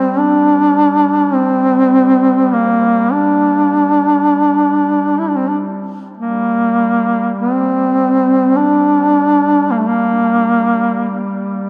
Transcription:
Already playing: G3 C4
0.19 D4
1.34 C4
2.54 A#3
3.12 D4
5.19 E4
5.29 D4
5.36 C4
5.48 D4
6.17 G3 A#3
7.39 C4
8.57 D4
9.71 A#3
9.79 A3
9.87 A#3

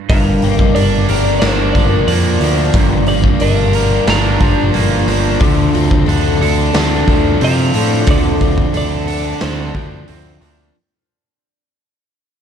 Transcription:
0.09 G1 G2 A#4 F5, kick, open hi-hat
0.42 G1 A#3 G4, open hi-hat
0.59 D#5, kick
0.75 G1 D4 A#4 D5, open hi-hat
1.09 G1 D4 A#4, open hi-hat
1.40 G1 A#3 D4 A#4 C5, snare, open hi-hat
1.73 G1 F3 D4 D5, kick, open hi-hat
2.08 F2 F3 A#3 D5, open hi-hat
2.40 D2 F3 D4 C5, open hi-hat
2.74 G1 G2 A#4, kick, open hi-hat
3.06 A#3 G4 D5, open hi-hat
3.24 kick
3.40 G1 D4 A#4 F5, open hi-hat
3.73 D4 A#4, open hi-hat
4.07 G1 A#3 D4 A#4 A#5, snare, open hi-hat
4.40 G1 F3 D4, kick, open hi-hat
4.74 G1 F3 A#3, open hi-hat
5.06 G1 F3 D4 C5, open hi-hat
5.40 D2 D3 A4, kick, open hi-hat
5.74 D2 C4 F4, open hi-hat
5.91 kick
6.06 D2 D4 A4, open hi-hat
6.41 D2 D4 A4, open hi-hat
6.73 D2 C4 D4 A4, snare, open hi-hat
7.08 D2 F3 D4, kick, open hi-hat
7.41 C3 F3 C4 F5, open hi-hat
7.74 A2 F3 D4 A4, open hi-hat
8.07 D2 D3 A4 D5, kick, open hi-hat
8.40 C4 F4, kick, open hi-hat
8.58 kick
8.74 D2 D4 A4 D5, open hi-hat
9.07 D4 A4, open hi-hat
9.41 D2 C4 D4 A4 C5, snare, open hi-hat
9.74 D2 F3 D4, kick, open hi-hat
10.08 D2 F3 C4, open hi-hat
10.41 D2 F3 A#3 D4, open hi-hat

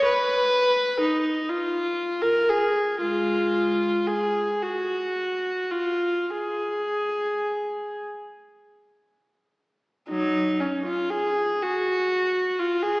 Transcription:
0.05 B4
1.01 D#4
1.49 F4
2.22 A#4
2.49 G#4
3.01 G#3 F4
4.07 G#4
4.63 F#4
5.71 F4
6.30 G#4
10.09 F#3 D#4
10.60 C#4
10.86 F4
11.10 G#4
11.62 F#4
12.59 F4
12.83 G#4

